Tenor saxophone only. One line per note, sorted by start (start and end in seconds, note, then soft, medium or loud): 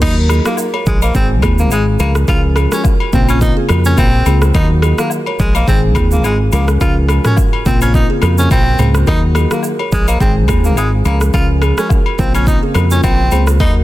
0.02 0.15 D#4 loud
0.46 0.57 A#3 medium
0.87 1.00 G#3 medium
1.03 1.14 A#3 medium
1.15 1.28 C4 medium
1.59 1.70 A#3 medium
1.72 1.85 G#3 medium
2.00 2.13 A#3 medium
2.29 2.42 F4 medium
2.73 2.83 C#4 medium
3.14 3.27 C4 medium
3.30 3.40 C#4 medium
3.42 3.55 D#4 medium
3.86 3.96 C#4 medium
3.99 4.39 C4 medium
4.55 4.68 D#4 loud
4.99 5.09 A#3 medium
5.40 5.53 G#3 medium
5.55 5.66 A#3 medium
5.68 5.81 C4 medium
6.12 6.23 A#3 medium
6.25 6.38 G#3 medium
6.53 6.66 A#3 medium
6.81 6.94 F4 medium
7.26 7.36 C#4 medium
7.66 7.79 C4 medium
7.82 7.93 C#4 medium
7.95 8.08 D#4 medium
8.39 8.49 C#4 medium
8.52 8.92 C4 medium
9.08 9.21 D#4 loud
9.52 9.63 A#3 medium
9.93 10.06 G#3 medium
10.08 10.19 A#3 medium
10.21 10.34 C4 medium
10.65 10.76 A#3 medium
10.78 10.91 G#3 medium
11.06 11.19 A#3 medium
11.34 11.47 F4 medium
11.78 11.89 C#4 medium
12.19 12.32 C4 medium
12.35 12.46 C#4 medium
12.47 12.60 D#4 medium
12.91 13.02 C#4 medium
13.04 13.45 C4 medium
13.60 13.73 D#4 loud